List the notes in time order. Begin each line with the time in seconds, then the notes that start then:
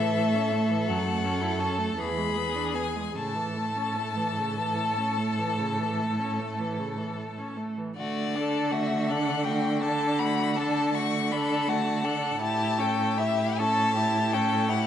Already playing: A2 A4 E5
0.00 E3
0.18 A3
0.35 C#4
0.52 A3
0.70 E3
0.88 F#2 F#3 F#5
1.05 A3
1.24 C#4
1.41 E4
1.59 C#4 A5
1.79 A3
1.98 E2 E3 G#4 B5
2.17 G#3
2.37 B3
2.55 D4
2.75 B3 G#5
2.96 G#3
3.15 A2 C#3 A4 A5
3.35 E3
3.56 A3
3.76 C#4
3.96 A3
4.16 E3
4.37 C#3
4.58 E3
4.77 A3
4.98 C#4
5.18 A3
5.39 E3
5.59 C#3
5.80 E3
6.00 A3
6.19 C#4
6.40 A3
6.59 E3
6.79 C#3
6.98 E3
7.16 A3
7.38 C#4
7.57 A3
7.78 E3
7.96 D3 A3 F#4 D5
8.35 D4 A4
8.72 A3 F#4 E5
9.09 D4 A4 F#5
9.45 A3 F#4 G5
9.82 D4 A4 A5
10.19 A3 F#4 B5
10.56 D4 A4 A5
10.94 A3 F#4 C#6
11.32 D4 A4 B5
11.68 A3 F#4 A5
12.04 D4 A4 F#5
12.40 A2 E4 G4 A5
12.78 C#4 A4 G5
13.18 E4 G4 E5
13.58 C#4 A4 A5
13.96 E4 G4
14.33 C#4 A4 G5
14.69 E4 G4 F#5